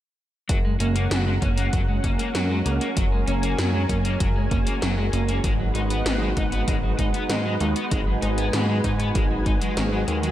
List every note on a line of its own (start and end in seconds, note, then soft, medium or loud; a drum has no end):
0.49 0.77 F#1 loud
0.49 0.57 F#3 medium
0.49 10.31 G#3 medium
0.49 5.40 C#4 medium
0.49 10.31 F#4 medium
0.49 5.40 A#4 medium
0.49 2.94 F#5 medium
0.49 kick loud
0.49 closed hi-hat medium
0.65 0.73 G#3 medium
0.80 1.08 F#1 medium
0.80 0.95 A#3 medium
0.80 0.85 C#4 loud
0.80 closed hi-hat medium
0.96 1.03 A#3 medium
0.96 1.09 C#4 medium
0.96 closed hi-hat medium
1.11 1.39 F#1 medium
1.11 1.23 F#3 loud
1.11 1.19 F#3 medium
1.11 snare loud
1.11 closed hi-hat loud
1.26 1.34 F#3 medium
1.26 1.35 G#3 medium
1.42 1.70 F#1 loud
1.42 1.57 A#3 medium
1.42 1.47 C#4 loud
1.42 kick loud
1.42 closed hi-hat medium
1.57 1.65 A#3 medium
1.57 1.71 C#4 medium
1.57 closed hi-hat medium
1.73 2.01 F#1 medium
1.73 1.81 F#3 medium
1.73 kick loud
1.73 closed hi-hat loud
1.88 1.96 G#3 medium
2.04 2.18 F#1 medium
2.04 2.19 A#3 medium
2.04 2.08 C#4 medium
2.04 kick medium
2.04 closed hi-hat medium
2.19 2.27 A#3 medium
2.19 2.33 C#4 medium
2.19 closed hi-hat medium
2.35 2.62 F#2 medium
2.35 2.46 F#3 loud
2.35 2.43 F#3 medium
2.35 snare loud
2.35 closed hi-hat medium
2.50 2.58 F#3 medium
2.50 2.58 G#3 medium
2.66 2.80 C#2 medium
2.66 2.80 A#3 medium
2.66 2.70 C#4 loud
2.66 closed hi-hat medium
2.81 2.89 A#3 medium
2.81 2.95 C#4 medium
2.81 closed hi-hat medium
2.97 3.24 F#1 medium
2.97 3.04 F#3 medium
2.97 3.05 F#3 medium
2.97 5.42 G#5 medium
2.97 kick loud
2.97 closed hi-hat medium
3.12 3.20 G#3 medium
3.27 3.55 F#1 medium
3.27 3.42 A#3 medium
3.27 3.32 C#4 loud
3.27 closed hi-hat medium
3.43 3.51 A#3 medium
3.43 3.57 C#4 medium
3.43 closed hi-hat medium
3.58 3.86 F#2 loud
3.58 3.70 F#3 loud
3.58 3.67 F#3 medium
3.58 snare loud
3.58 closed hi-hat loud
3.74 3.82 F#3 medium
3.74 3.82 G#3 medium
3.89 4.17 F#2 medium
3.89 4.04 A#3 medium
3.89 3.94 C#4 loud
3.89 kick medium
3.89 closed hi-hat medium
4.05 4.13 A#3 medium
4.05 4.18 C#4 medium
4.05 closed hi-hat medium
4.20 4.48 F#1 medium
4.20 4.28 F#3 medium
4.20 kick loud
4.20 closed hi-hat loud
4.36 4.44 G#3 medium
4.51 4.65 F#1 medium
4.51 4.66 A#3 medium
4.51 4.56 C#4 loud
4.51 kick loud
4.51 closed hi-hat medium
4.67 4.74 A#3 medium
4.67 4.80 C#4 medium
4.67 closed hi-hat medium
4.82 5.10 F#1 medium
4.82 4.94 F#3 loud
4.82 4.90 F#3 medium
4.82 snare loud
4.82 closed hi-hat medium
4.98 5.05 F#3 medium
4.98 5.06 G#3 medium
5.13 5.41 F#1 loud
5.13 5.28 A#3 medium
5.13 5.18 C#4 loud
5.13 closed hi-hat medium
5.29 5.36 A#3 medium
5.29 5.42 C#4 medium
5.29 closed hi-hat medium
5.44 5.72 G#1 medium
5.44 5.52 D#3 medium
5.44 5.52 G#3 medium
5.44 10.31 D#4 medium
5.44 10.31 B4 medium
5.44 7.89 F#5 medium
5.44 kick loud
5.44 closed hi-hat medium
5.60 5.68 F#3 medium
5.75 6.03 G#1 medium
5.75 5.90 G#3 medium
5.75 5.80 D#4 loud
5.75 closed hi-hat medium
5.90 6.04 B3 medium
5.90 5.98 B3 medium
5.90 closed hi-hat medium
6.06 6.34 G#1 medium
6.06 6.14 D#3 medium
6.06 6.18 G#3 loud
6.06 snare loud
6.06 closed hi-hat loud
6.21 6.29 F#3 medium
6.21 6.29 G#3 medium
6.37 6.65 G#1 loud
6.37 6.52 G#3 medium
6.37 6.41 D#4 loud
6.37 kick loud
6.37 closed hi-hat medium
6.52 6.66 B3 medium
6.52 6.60 B3 medium
6.52 closed hi-hat medium
6.68 6.95 G#1 medium
6.68 6.76 D#3 medium
6.68 6.75 G#3 medium
6.68 kick loud
6.68 closed hi-hat medium
6.83 6.91 F#3 medium
6.99 7.13 G#1 medium
6.99 7.13 G#3 medium
6.99 7.03 D#4 medium
6.99 kick medium
6.99 closed hi-hat medium
7.14 7.22 B3 medium
7.14 7.28 B3 medium
7.14 closed hi-hat medium
7.30 7.57 G#2 medium
7.30 7.38 D#3 medium
7.30 7.41 G#3 loud
7.30 snare loud
7.30 closed hi-hat medium
7.45 7.53 F#3 medium
7.45 7.53 G#3 medium
7.60 7.74 D#2 medium
7.60 7.75 G#3 medium
7.60 7.65 D#4 loud
7.60 closed hi-hat medium
7.76 7.84 B3 medium
7.76 7.90 B3 medium
7.76 closed hi-hat medium
7.91 8.19 G#1 medium
7.91 8.00 D#3 medium
7.91 7.99 G#3 medium
7.91 10.31 G#5 medium
7.91 kick loud
7.91 closed hi-hat medium
8.07 8.15 F#3 medium
8.22 8.50 G#1 medium
8.22 8.37 G#3 medium
8.22 8.27 D#4 loud
8.22 closed hi-hat medium
8.38 8.51 B3 medium
8.38 8.46 B3 medium
8.38 closed hi-hat medium
8.53 8.81 G#2 medium
8.53 8.61 D#3 medium
8.53 8.65 G#3 loud
8.53 snare loud
8.53 closed hi-hat loud
8.69 8.77 F#3 medium
8.69 8.77 G#3 medium
8.84 9.12 G#2 medium
8.84 8.99 G#3 medium
8.84 8.89 D#4 loud
8.84 kick medium
8.84 closed hi-hat medium
9.00 9.07 B3 medium
9.00 9.13 B3 medium
9.00 closed hi-hat medium
9.15 9.43 G#1 medium
9.15 9.23 D#3 medium
9.15 9.23 G#3 medium
9.15 kick loud
9.15 closed hi-hat medium
9.31 9.39 F#3 medium
9.46 9.60 G#1 medium
9.46 9.54 G#3 medium
9.46 9.51 D#4 medium
9.46 kick loud
9.46 closed hi-hat medium
9.61 9.70 F#3 medium
9.61 9.73 G#3 medium
9.61 closed hi-hat medium
9.77 10.05 G#1 loud
9.77 9.90 D#3 loud
9.77 9.82 G#3 medium
9.77 snare loud
9.77 closed hi-hat medium
9.92 10.07 F#3 medium
9.92 10.00 G#3 medium
10.08 10.31 D#2 medium
10.08 10.21 D#3 medium
10.08 10.16 G#3 medium
10.08 closed hi-hat medium
10.23 10.31 F#3 medium
10.23 10.28 G#3 medium
10.23 closed hi-hat medium